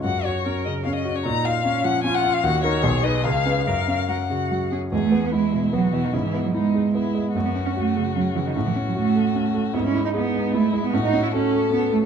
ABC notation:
X:1
M:3/4
L:1/16
Q:1/4=150
K:F#
V:1 name="Violin"
f2 c4 d2 e d2 c | a2 e4 f2 g f2 e | f2 c4 d2 e4 | e4 f6 z2 |
[K:E] G4 E4 F4 | E4 D4 E4 | F12 | F12 |
E4 D4 E4 | F4 A8 |]
V:2 name="Cello"
F4 A4 C4 | D4 C4 E4 | F4 G4 G4 | A4 A2 F4 G2 |
[K:E] G, A,2 B, G,4 F,2 E, D, | C, E,2 F, G,6 z2 | A, B,2 C A,4 F,2 E, D, | C, E,2 F, A,6 z2 |
B, C2 D B,4 A,2 G, B, | C D2 E C4 B,2 A, z |]
V:3 name="Grand piano"
F,,2 F2 C2 C,2 C2 F2 | A,,2 E2 C2 E,2 C2 E2 | D,,2 [DA]2 B,,,2 [DB]2 C,,2 [CB]2 | F,,2 C2 F,2 C,2 F,2 C2 |
[K:E] E,,2 B,2 E2 B,,2 B,2 B,,2 | G,,2 B,2 E2 G,2 B,2 G,2 | F,,2 C2 F2 C,2 C2 C,2 | A,,2 C2 F2 A,2 C2 A,2 |
G,,2 E2 G2 G,2 E2 G,2 | A,,2 C2 F2 A,2 C2 A,2 |]